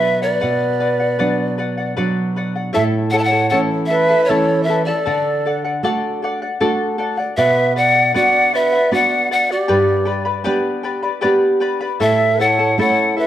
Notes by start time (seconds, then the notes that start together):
Already playing: B2 F#3 B3 D4 B4 E5
0.02 B4 D5 F#5
0.22 B4 D5 F#5
0.41 B2 B4 D5 F#5
0.80 B4 D5 F#5
1.00 D5 F#5
1.19 F#3 B3 D4 B4 D5 F#5
1.58 B4 D5 F#5
1.78 D5 F#5
1.97 F#3 B3 D4 B4 D5 F#5
2.36 B4 D5 F#5
2.56 D5 F#5
2.73 A2 E4 A4 C#5 E5 A5
3.11 E4 A4 C#5 E5 F#5 A5
3.18 F#5 A5
3.24 C#5 F#5
3.31 E4 A4 A5
3.49 E3 A3 C#4 E4 A4 C#5 E5 F#5 A5
3.86 E5
3.90 E4 A4 B4 A5
4.08 E4 A4 A5
4.25 A4 C#5
4.29 E3 A3 C#4 E4 A4 C#5 E5 A5
4.63 B4 E5
4.69 E4 A4 E5 A5
4.85 E4 A4 D5 A5
5.05 D3 A4 D5 F#5
5.46 A4 D5 F#5
5.65 D5 F#5
5.83 A3 D4 F#4 A4 D5 F#5
6.22 A4 D5 F#5
6.42 D5 F#5
6.61 A3 D4 F#4 A4 D5 F#5
6.98 A4 D5 F#5
7.17 D5 F#5
7.37 B2 B4 D5 E5 F#5
7.76 B4 D5 F#5
7.95 D5 F#5
8.14 B3 D4 F#4 B4 D5 F#5
8.53 B4 D5 E5 F#5
8.72 D5 F#5
8.91 B3 D4 F#4 B4 D5 F#5
9.31 B4 D5 F#5
9.49 G4 D5 F#5
9.68 G2 G4 B4 D5 G5 B5
10.05 B4 D5 G5 B5
10.25 B4 D5 B5
10.44 B3 D4 G4 B4 D5 G5 B5
10.83 B4 D5 G5 B5
11.03 B4 D5 B5
11.21 B3 D4 G4 B4 D5 G5 B5
11.60 B4 D5 G5 B5
11.81 B4 D5 B5
12.00 A2 E4 A4 C#5 E5 A5
12.39 E4 A4 C#5 E5 F#5 A5
12.59 E4 A4 A5
12.78 A3 C#4 E4 A4 C#5 E5 F#5 A5
13.17 E4 A4 B4 E5 A5